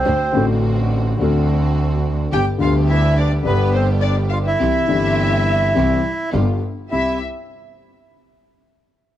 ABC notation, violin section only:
X:1
M:4/4
L:1/16
Q:1/4=105
K:C
V:1 name="Violin section"
c3 z12 z | g2 f2 e2 d2 B2 c2 d2 f e- | e12 z4 | e2 z12 z2 |]